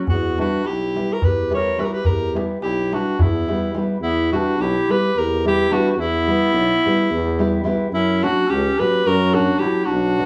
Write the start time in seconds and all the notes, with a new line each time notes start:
0.07 E2 B3 F#4, darbuka dum
0.23 darbuka tek
0.38 G3 B3 D4 E4 F#4 G4, darbuka tek
0.65 B1 E4 G4, darbuka tek
0.95 G3 B3 E4 G4, darbuka tek
1.09 F#4 A#4, darbuka tek
1.22 E2 G4 B4, darbuka dum
1.49 G3 B3 E4 G4, darbuka tek
1.54 A#4 C#5
1.77 G3 B3 E4 G4 B4, darbuka tek
1.81 F#4 G4 A#4
1.93 G4 B4
2.05 E2 G4 A#4, darbuka dum
2.21 darbuka tek
2.33 G3 B3 E4 G4, darbuka tek
2.49 darbuka tek
2.62 B1 E4 G4, darbuka tek
2.78 darbuka tek
2.92 G3 B3 D4 E4 F#4 G4, darbuka tek
3.06 darbuka tek
3.19 E2 B3 E4, darbuka dum
3.34 darbuka tek
3.48 G3 B3 E4 G4, darbuka tek
3.62 darbuka tek
3.74 G3 B3 E4 G4, darbuka tek
3.88 darbuka tek
4.01 E2 B3 E4
4.31 G3 B3 D4 E4 F#4 G4
4.57 B1 G4
4.61 E4
4.88 G3 B3 E4 G4 B4
5.16 E2 G4 A#4
5.44 G3 B3 E4 G4
5.71 G3 B3 D4 E4 F#4 G4
5.90 D4 F#4
5.96 E2 B3 E4
6.27 G3 B3 E4 G4
6.54 B1
6.85 G3 B3 E4 G4
7.11 E2
7.38 G3 B3 E4 G4
7.64 G3 B3 E4 G4
7.92 F#2 C#4 E4
8.22 F#3 A#3 C#4 D4 F#4
8.47 C#2 C#4 G4
8.78 F#3 A#3 C#4 F#4 G4 B4
9.06 F#2 F#4 A#4
9.34 F#3 A#3 C#4 D4 F#4
9.59 F#3 E4 G4
9.63 A#3 C#4 F#4
9.85 B1 D4 F#4
10.17 F#3 B3 D4 F#4